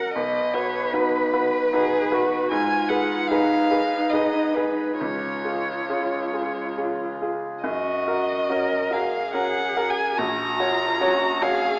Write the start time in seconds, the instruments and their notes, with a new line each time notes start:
Already playing: grand piano C#4 F#4 A#4, cello A#4, violin F#5
0.13 grand piano B1, cello B4, violin D#5
0.54 grand piano F#4 B4, violin C#5
0.93 grand piano D#4 F#4 B4, violin B4
1.34 grand piano F#4 B4
1.73 grand piano D#4 F#4 B4, cello G#4
2.12 grand piano F#4 B4, cello F#4
2.51 grand piano G#2, cello F4, violin G#5
2.89 grand piano G#4 B4, violin F#5
3.27 cello D#4, grand piano D#4 G#4, violin F5
3.32 grand piano B4
3.71 grand piano G#4 B4
4.10 grand piano D#4 G#4, violin D#5
4.14 grand piano B4
4.54 grand piano G#4 B4, violin B4
4.99 grand piano C#2, cello F4, violin C#5
5.44 grand piano F4 G#4
5.89 grand piano C#4 F4 G#4
6.33 grand piano F4 G#4
6.77 grand piano C#4 F4 G#4
7.21 grand piano F4 G#4
7.63 grand piano F#2, cello F#4, violin D#5
8.08 grand piano F#4 A#4
8.49 grand piano C#4 F#4 A#4, cello A#4
8.91 grand piano F#4 A#4, cello G#4, violin F5
9.33 grand piano C#4 F#4 A#4, violin F#5
9.77 grand piano F#4 A#4
9.90 violin G#5
10.17 grand piano A#1, cello F#4, violin A#5
10.60 cello F4, grand piano F#4 C#5
11.01 grand piano C#4 F#4 C#5, cello F#4
11.42 grand piano F#4 C#5, cello G#4, violin F5